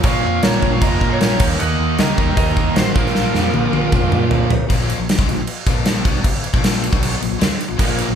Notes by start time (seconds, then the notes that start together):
0.02 A#1 A#2 F3 C#5 F5, kick, crash
0.06 A#3
0.24 F2
0.43 A#1 A#4 C#5, snare, crash
0.62 A#1, kick
0.73 C#5 F5
0.80 F1 A#2 F3 A#3 A#4 D#5, kick, crash
1.01 A#2, kick
1.10 A#4 C#5
1.21 A#1, snare, crash
1.38 D#2 D#3 A#3, kick, crash
1.42 D#4
1.60 D#2 D#5 F#5, crash
1.79 D#2
1.98 C#2 A#4 D#5, snare, crash
2.17 D#2 D#3 A#3 D#4, kick
2.37 D#2 A#4 D#5, kick, crash
2.57 kick
2.76 A1 F#4 C5, snare, crash
2.95 A#1 A#2 F3 A#3 F4 A#4, kick
3.06 snare
3.15 A#1, snare
3.34 F2, snare
3.54 A#1, high tom
3.71 A#1 F3 A#3, high tom
3.75 A#2
3.92 F1, kick, mid tom
4.12 A#2, mid tom
4.31 A#1, floor tom
4.50 A#2, floor tom
4.69 A#1 A#2 F3 A#3, kick, crash
4.90 crash
4.98 A#1 A#2 F3
5.09 snare, crash
5.19 C#2 C#3 G#3, kick
5.28 A#1 A#2 F3, crash
5.47 crash
5.67 A#1 A#2 F3 A#3, kick, crash
5.85 snare, crash
6.04 B1 B2 F#3 B3, kick, crash
6.24 muted overdriven electric guitar stroke, kick, crash
6.44 crash
6.53 A#1 A#2 F3 A#3, kick
6.64 snare, crash
6.84 crash
6.90 B1 B2 F#3 B3, kick
7.03 crash
7.21 A#1 A#2 F3, crash
7.29 A#1 A#2 F3
7.38 C#2 C#3 G#3, snare, crash
7.49 muted overdriven electric guitar stroke, muted fretless electric bass stroke
7.61 crash
7.69 A#1 A#2 F3
7.77 A#1 A#2 F3 A#3, kick, crash
7.99 crash
8.08 A#1 A#2 F3